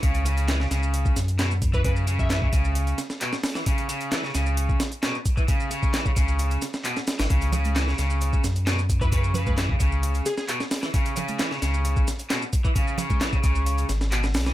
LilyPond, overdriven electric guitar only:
\new Staff \with { instrumentName = "Overdriven electric guitar" } { \clef bass \time 4/4 \key cis \minor \tempo 4 = 132 cis8 cis8 e16 cis16 cis4 r8 b,16 r8 e16 | cis8 cis8 e16 cis16 cis4 r8 b,16 r8 e16 | cis8 cis8 e16 cis16 cis4 r8 b,16 r8 e16 | cis8 cis8 e16 cis16 cis4 r8 b,16 r8 e16 |
cis8 cis8 e16 cis16 cis4 r8 b,16 r8 e16 | cis8 cis8 e16 cis16 cis4 r8 b,16 r8 e16 | cis8 cis8 e16 cis16 cis4 r8 b,16 r8 e16 | cis8 cis8 e16 cis16 cis4 r8 b,16 r8 e16 | }